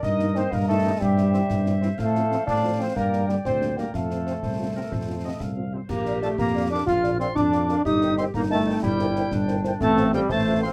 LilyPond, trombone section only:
\new Staff \with { instrumentName = "Trombone section" } { \time 6/8 \key bes \major \tempo 4. = 123 r4 <ees ees'>16 r4 r16 <ees ees'>16 r16 | r4 <e c'>16 r4 r16 <e c'>16 r16 | r4 <f c'>16 r4 r16 <f c'>16 r16 | r4 <d bes>16 r4 r16 <d bes>16 r16 |
r4 <c c'>16 r4 r16 <c c'>16 r16 | r4 <c c'>16 r4 r16 <c c'>16 r16 | bes4 a8 bes4 d'8 | f'4 c'8 d'4. |
ees'4 c'8 bes8 a4 | g2~ g8 r8 | a4 g8 a4 c'8 | }